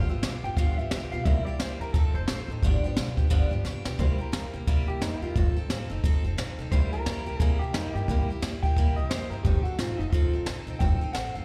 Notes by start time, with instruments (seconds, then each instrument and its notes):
Already playing: steel-string acoustic guitar D3
0.09 steel-string acoustic guitar F3 B3 F4 G4, clean electric guitar E5, muted upright bass stroke
0.23 upright bass B1, steel-string acoustic guitar F3 B3 F4 G4, clean electric guitar D5, snare
0.43 upright bass G1, steel-string acoustic guitar F3 B3 F4 G4, clean electric guitar G5
0.56 upright bass G1, steel-string acoustic guitar G2 D3 F3 B3 F4 G4, clean electric guitar F5, kick, open hi-hat
0.77 upright bass G1, steel-string acoustic guitar F3 B3 F4 G4, clean electric guitar E5
0.91 upright bass C2, steel-string acoustic guitar F3 B3 F4 G4, clean electric guitar D5, snare, open hi-hat
1.12 upright bass B1, steel-string acoustic guitar F3 B3 F4 G4, clean electric guitar F5
1.25 upright bass C2, steel-string acoustic guitar C3 G3 A#3 E4 G4, clean electric guitar E5, kick, open hi-hat
1.45 steel-string acoustic guitar E4 G4, clean electric guitar D5, muted upright bass stroke
1.49 steel-string acoustic guitar A#3
1.59 upright bass E2, steel-string acoustic guitar G3 A#3 E4 G4, clean electric guitar C5, snare, open hi-hat
1.80 upright bass E2, steel-string acoustic guitar A#3 E4 G4, clean electric guitar A#4
1.93 upright bass F1, steel-string acoustic guitar F3 C4 D#4 A4, clean electric guitar A4, kick, open hi-hat
2.14 upright bass F1, steel-string acoustic guitar C4 D#4 A4, clean electric guitar C5
2.28 upright bass A#1, steel-string acoustic guitar F3 C4 D#4 A4, snare, open hi-hat
2.48 upright bass A1, steel-string acoustic guitar C4 D#4 A4
2.62 upright bass G1, steel-string acoustic guitar G2 D3 F3 B3 D4 G4, kick, open hi-hat
2.83 steel-string acoustic guitar F3 B3 D4 G4, muted upright bass stroke
2.97 upright bass B1, steel-string acoustic guitar F3 B3 D4 G4, snare
3.17 upright bass G1, steel-string acoustic guitar F3 B3 D4 G4, kick
3.30 upright bass G1, steel-string acoustic guitar G2 D3 F3 B3 D4 G4, kick, open hi-hat
3.51 upright bass G1, steel-string acoustic guitar F3 B3 D4 G4
3.64 upright bass C2, steel-string acoustic guitar F3 B3 D4 G4, snare
3.85 upright bass B1, steel-string acoustic guitar F3 B3 D4 G4, snare
3.99 upright bass C2, steel-string acoustic guitar C3 G3 A#3 E4 G4, clean electric guitar C5, kick, open hi-hat
4.18 steel-string acoustic guitar A#3 E4 G4, clean electric guitar A#4, muted upright bass stroke
4.32 upright bass E2, steel-string acoustic guitar G3 A#3 E4 G4, snare
4.53 upright bass C2, steel-string acoustic guitar A#3 E4 G4
4.67 upright bass C2, steel-string acoustic guitar C3 G3 A#3 E4 G4, kick, open hi-hat
4.87 upright bass C2, steel-string acoustic guitar A#3 E4 G4, clean electric guitar G4
5.01 upright bass F2, steel-string acoustic guitar G3 A#3 E4 G4, clean electric guitar D#4, snare
5.22 upright bass E2, steel-string acoustic guitar A#3 E4 G4, clean electric guitar F4
5.35 upright bass F1, steel-string acoustic guitar F3 C4 D#4 A4, kick, open hi-hat
5.56 steel-string acoustic guitar C4 D#4 A4, muted upright bass stroke
5.69 upright bass A1, steel-string acoustic guitar F3 C4 D#4 A4, snare
5.90 upright bass F1, steel-string acoustic guitar C4 D#4 A4
6.04 upright bass F1, steel-string acoustic guitar F3 C4 D#4 A4, kick, open hi-hat
6.24 upright bass F1, steel-string acoustic guitar C4 D#4 A4
6.37 upright bass A#1, steel-string acoustic guitar F3 C4 D#4 A4, snare
6.58 upright bass C2, steel-string acoustic guitar C4 D#4 A4
6.71 upright bass C2, steel-string acoustic guitar C3 G3 A#3 E4 G4, clean electric guitar C5, kick, open hi-hat
6.92 steel-string acoustic guitar A#3 E4 G4, clean electric guitar A#4, muted upright bass stroke
7.06 upright bass E2, steel-string acoustic guitar G3 A#3 E4 G4, snare, open hi-hat
7.26 upright bass C2, steel-string acoustic guitar A#3 E4 G4
7.40 upright bass C2, steel-string acoustic guitar C3 G3 A#3 E4 G4, clean electric guitar G#4, kick, open hi-hat
7.59 upright bass C2, steel-string acoustic guitar E4 G4, clean electric guitar G4
7.64 steel-string acoustic guitar A#3
7.73 upright bass F2, steel-string acoustic guitar G3 A#3 E4 G4, clean electric guitar D#4, snare, open hi-hat
7.94 upright bass G2, steel-string acoustic guitar E4 G4, clean electric guitar G4
7.98 steel-string acoustic guitar A#3
8.08 upright bass C2, steel-string acoustic guitar C3 G3 A#3 E4 G4, kick, open hi-hat
8.28 steel-string acoustic guitar A#3 E4 G4, muted upright bass stroke
8.42 upright bass E2, steel-string acoustic guitar G3 A#3 E4 G4, snare
8.63 upright bass C2, steel-string acoustic guitar A#3 E4 G4, clean electric guitar G5, kick
8.76 upright bass C2, steel-string acoustic guitar C3 G3 A#3 E4 G4, kick, open hi-hat
8.96 upright bass C2, steel-string acoustic guitar A#3 E4 G4, clean electric guitar D#5
9.10 upright bass F2, steel-string acoustic guitar G3 A#3 E4 G4, clean electric guitar C5, snare, open hi-hat
9.30 upright bass G2, steel-string acoustic guitar A#3 E4 G4, clean electric guitar A#4
9.43 upright bass F1, steel-string acoustic guitar F3 C4 D#4 A4, clean electric guitar G4, kick, open hi-hat
9.63 steel-string acoustic guitar D#4 A4, clean electric guitar F#4, muted upright bass stroke
9.68 steel-string acoustic guitar C4
9.78 upright bass A1, steel-string acoustic guitar F3 C4 D#4 A4, clean electric guitar F4, snare, open hi-hat
9.98 upright bass F1, clean electric guitar D#4, steel-string acoustic guitar D#4 A4
10.03 steel-string acoustic guitar C4
10.10 upright bass F1, steel-string acoustic guitar F3, clean electric guitar F4, kick, open hi-hat
10.14 steel-string acoustic guitar C4 D#4 A4
10.33 upright bass F1, steel-string acoustic guitar C4 D#4 A4
10.46 upright bass A#1, steel-string acoustic guitar F3 C4 D#4 A4, snare, open hi-hat
10.67 upright bass C2, steel-string acoustic guitar C4 D#4 A4
10.79 upright bass F1, steel-string acoustic guitar F3 C4 D#4 A4, clean electric guitar G5, kick, open hi-hat
11.01 steel-string acoustic guitar C4 D#4 A4, muted upright bass stroke
11.13 upright bass A1, steel-string acoustic guitar F3 C4 D#4 A4, clean electric guitar F#5, snare, open hi-hat
11.34 upright bass F1, steel-string acoustic guitar C4 D#4 A4, clean electric guitar F5